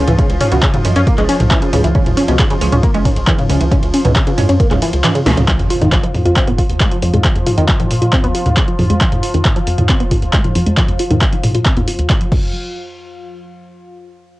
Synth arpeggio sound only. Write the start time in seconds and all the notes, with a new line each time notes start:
0.08 E3
0.19 C#3
0.41 C#4
0.52 B2
0.63 C#3
0.74 C#3
0.96 C#4
1.07 A#3
1.18 G#3
1.29 C#4
1.51 E3
1.62 C#3
1.73 C#3
1.84 E3
1.95 C#3
2.17 C#4
2.28 B2
2.39 C#3
2.50 C#3
2.72 C#4
2.83 A#3
2.95 G#3
3.06 C#4
3.28 E3
3.39 C#3
3.50 C#3
3.61 E3
3.72 C#3
3.94 C#4
4.05 B2
4.16 C#3
4.27 C#3
4.49 C#4
4.60 A#3
4.71 G#3
4.82 E3
5.04 E3
5.15 C#3
5.26 B2
5.37 C#3
5.48 F3
5.70 F4
5.81 D#3
5.92 F3
6.03 F3
6.25 F4
6.36 C4
6.47 B3
6.58 F4
6.81 G#3
6.92 F3
7.03 F3
7.14 G#3
7.25 F3
7.47 F4
7.58 D#3
7.69 F3
7.80 F3
8.02 F4
8.13 C4
8.24 B3
8.35 F4
8.57 G#3
8.68 F3
8.79 F3
8.90 G#3
9.01 F3
9.23 F4
9.34 D#3
9.45 F3
9.56 F3
9.78 F4
9.89 C4
10.00 B3
10.11 F4
10.33 G#3
10.45 F3
10.55 F3
10.67 G#3
10.78 F3
11.00 F4
11.11 D#3
11.22 F3
11.33 F3
11.55 F4
11.66 C4
11.77 B3
11.88 F4
12.10 G#3
12.21 F3
12.32 F3